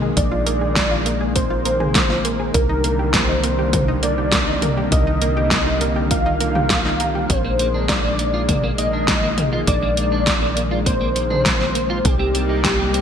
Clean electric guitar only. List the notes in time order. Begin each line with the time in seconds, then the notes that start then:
7.30 A#3
7.45 A#3
7.59 A#3
7.74 D4
7.89 A#4
8.04 A#3
8.19 A#3
8.34 F4
8.49 A#3
8.64 A#3
8.78 A#3
8.93 D4
9.08 A#4
9.23 A#3
9.38 A#3
9.53 F4
9.68 A#3
9.83 A#3
9.97 A#3
10.12 D4
10.27 A#4
10.42 A#3
10.57 A#3
10.71 F4
10.86 A#3
11.01 A#3
11.16 A#3
11.30 D4
11.45 A#4
11.60 A#3
11.75 A#3
11.90 F4
12.05 C4
12.19 C4
12.34 C4
12.49 D#4
12.64 C5
12.79 C4
12.94 C4